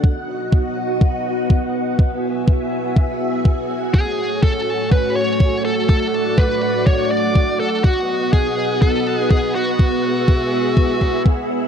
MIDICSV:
0, 0, Header, 1, 4, 480
1, 0, Start_track
1, 0, Tempo, 487805
1, 36, Time_signature, 4, 2, 24, 8
1, 11491, End_track
2, 0, Start_track
2, 0, Title_t, "String machine"
2, 0, Program_c, 0, 50
2, 0, Note_on_c, 0, 78, 76
2, 34, Note_on_c, 0, 59, 82
2, 34, Note_on_c, 0, 66, 76
2, 34, Note_on_c, 0, 75, 79
2, 1918, Note_off_c, 0, 78, 0
2, 1936, Note_off_c, 0, 66, 0
2, 1936, Note_off_c, 0, 75, 0
2, 1956, Note_on_c, 0, 80, 96
2, 1957, Note_on_c, 0, 66, 75
2, 1957, Note_on_c, 0, 76, 77
2, 3837, Note_off_c, 0, 59, 0
2, 3857, Note_off_c, 0, 76, 0
2, 3876, Note_on_c, 0, 57, 86
2, 3876, Note_on_c, 0, 73, 79
2, 5758, Note_off_c, 0, 80, 0
2, 5777, Note_off_c, 0, 73, 0
2, 5797, Note_on_c, 0, 78, 92
2, 5798, Note_on_c, 0, 74, 81
2, 7678, Note_off_c, 0, 57, 0
2, 7698, Note_off_c, 0, 74, 0
2, 7714, Note_on_c, 0, 59, 85
2, 7715, Note_on_c, 0, 75, 81
2, 9597, Note_off_c, 0, 66, 0
2, 9616, Note_off_c, 0, 75, 0
2, 9639, Note_on_c, 0, 68, 79
2, 9639, Note_on_c, 0, 76, 76
2, 11491, Note_off_c, 0, 59, 0
2, 11491, Note_off_c, 0, 68, 0
2, 11491, Note_off_c, 0, 76, 0
2, 11491, Note_off_c, 0, 78, 0
2, 11491, End_track
3, 0, Start_track
3, 0, Title_t, "Lead electric guitar"
3, 0, Program_c, 1, 29
3, 3883, Note_on_c, 1, 68, 86
3, 4326, Note_off_c, 1, 68, 0
3, 4360, Note_on_c, 1, 69, 87
3, 4805, Note_off_c, 1, 69, 0
3, 4841, Note_on_c, 1, 71, 86
3, 5062, Note_off_c, 1, 71, 0
3, 5080, Note_on_c, 1, 73, 94
3, 5525, Note_off_c, 1, 73, 0
3, 5560, Note_on_c, 1, 69, 88
3, 5786, Note_off_c, 1, 69, 0
3, 5798, Note_on_c, 1, 69, 97
3, 6277, Note_on_c, 1, 71, 98
3, 6291, Note_off_c, 1, 69, 0
3, 6723, Note_off_c, 1, 71, 0
3, 6757, Note_on_c, 1, 73, 103
3, 6993, Note_off_c, 1, 73, 0
3, 6997, Note_on_c, 1, 74, 104
3, 7443, Note_off_c, 1, 74, 0
3, 7477, Note_on_c, 1, 69, 91
3, 7714, Note_off_c, 1, 69, 0
3, 7718, Note_on_c, 1, 66, 98
3, 8164, Note_off_c, 1, 66, 0
3, 8197, Note_on_c, 1, 68, 92
3, 8643, Note_off_c, 1, 68, 0
3, 8679, Note_on_c, 1, 69, 88
3, 9043, Note_off_c, 1, 69, 0
3, 9043, Note_on_c, 1, 68, 88
3, 9153, Note_off_c, 1, 68, 0
3, 9157, Note_on_c, 1, 68, 88
3, 9395, Note_off_c, 1, 68, 0
3, 9399, Note_on_c, 1, 66, 76
3, 11038, Note_off_c, 1, 66, 0
3, 11491, End_track
4, 0, Start_track
4, 0, Title_t, "Drums"
4, 35, Note_on_c, 9, 36, 112
4, 134, Note_off_c, 9, 36, 0
4, 275, Note_on_c, 9, 46, 87
4, 373, Note_off_c, 9, 46, 0
4, 516, Note_on_c, 9, 36, 115
4, 614, Note_off_c, 9, 36, 0
4, 754, Note_on_c, 9, 46, 75
4, 852, Note_off_c, 9, 46, 0
4, 995, Note_on_c, 9, 36, 119
4, 1094, Note_off_c, 9, 36, 0
4, 1234, Note_on_c, 9, 46, 90
4, 1333, Note_off_c, 9, 46, 0
4, 1476, Note_on_c, 9, 36, 110
4, 1574, Note_off_c, 9, 36, 0
4, 1715, Note_on_c, 9, 46, 82
4, 1814, Note_off_c, 9, 46, 0
4, 1956, Note_on_c, 9, 36, 110
4, 2054, Note_off_c, 9, 36, 0
4, 2196, Note_on_c, 9, 46, 96
4, 2295, Note_off_c, 9, 46, 0
4, 2436, Note_on_c, 9, 36, 118
4, 2534, Note_off_c, 9, 36, 0
4, 2676, Note_on_c, 9, 46, 81
4, 2774, Note_off_c, 9, 46, 0
4, 2916, Note_on_c, 9, 36, 117
4, 3014, Note_off_c, 9, 36, 0
4, 3156, Note_on_c, 9, 46, 95
4, 3254, Note_off_c, 9, 46, 0
4, 3396, Note_on_c, 9, 36, 111
4, 3494, Note_off_c, 9, 36, 0
4, 3636, Note_on_c, 9, 46, 79
4, 3734, Note_off_c, 9, 46, 0
4, 3876, Note_on_c, 9, 36, 108
4, 3975, Note_off_c, 9, 36, 0
4, 4115, Note_on_c, 9, 46, 95
4, 4214, Note_off_c, 9, 46, 0
4, 4356, Note_on_c, 9, 36, 107
4, 4454, Note_off_c, 9, 36, 0
4, 4595, Note_on_c, 9, 46, 87
4, 4694, Note_off_c, 9, 46, 0
4, 4836, Note_on_c, 9, 36, 109
4, 4935, Note_off_c, 9, 36, 0
4, 5075, Note_on_c, 9, 46, 94
4, 5173, Note_off_c, 9, 46, 0
4, 5316, Note_on_c, 9, 36, 113
4, 5414, Note_off_c, 9, 36, 0
4, 5554, Note_on_c, 9, 46, 88
4, 5652, Note_off_c, 9, 46, 0
4, 5795, Note_on_c, 9, 36, 106
4, 5894, Note_off_c, 9, 36, 0
4, 6034, Note_on_c, 9, 46, 99
4, 6132, Note_off_c, 9, 46, 0
4, 6276, Note_on_c, 9, 36, 110
4, 6374, Note_off_c, 9, 36, 0
4, 6515, Note_on_c, 9, 46, 87
4, 6613, Note_off_c, 9, 46, 0
4, 6755, Note_on_c, 9, 36, 107
4, 6854, Note_off_c, 9, 36, 0
4, 6995, Note_on_c, 9, 46, 100
4, 7094, Note_off_c, 9, 46, 0
4, 7235, Note_on_c, 9, 36, 101
4, 7334, Note_off_c, 9, 36, 0
4, 7476, Note_on_c, 9, 46, 87
4, 7574, Note_off_c, 9, 46, 0
4, 7716, Note_on_c, 9, 36, 106
4, 7814, Note_off_c, 9, 36, 0
4, 7956, Note_on_c, 9, 46, 102
4, 8055, Note_off_c, 9, 46, 0
4, 8196, Note_on_c, 9, 36, 110
4, 8294, Note_off_c, 9, 36, 0
4, 8436, Note_on_c, 9, 46, 91
4, 8535, Note_off_c, 9, 46, 0
4, 8676, Note_on_c, 9, 36, 110
4, 8774, Note_off_c, 9, 36, 0
4, 8916, Note_on_c, 9, 46, 101
4, 9014, Note_off_c, 9, 46, 0
4, 9156, Note_on_c, 9, 36, 106
4, 9254, Note_off_c, 9, 36, 0
4, 9396, Note_on_c, 9, 46, 93
4, 9494, Note_off_c, 9, 46, 0
4, 9636, Note_on_c, 9, 36, 104
4, 9734, Note_off_c, 9, 36, 0
4, 9874, Note_on_c, 9, 46, 100
4, 9973, Note_off_c, 9, 46, 0
4, 10116, Note_on_c, 9, 36, 108
4, 10214, Note_off_c, 9, 36, 0
4, 10354, Note_on_c, 9, 46, 89
4, 10453, Note_off_c, 9, 46, 0
4, 10596, Note_on_c, 9, 36, 108
4, 10694, Note_off_c, 9, 36, 0
4, 10835, Note_on_c, 9, 46, 93
4, 10836, Note_on_c, 9, 36, 55
4, 10934, Note_off_c, 9, 36, 0
4, 10934, Note_off_c, 9, 46, 0
4, 11076, Note_on_c, 9, 36, 105
4, 11174, Note_off_c, 9, 36, 0
4, 11315, Note_on_c, 9, 46, 89
4, 11414, Note_off_c, 9, 46, 0
4, 11491, End_track
0, 0, End_of_file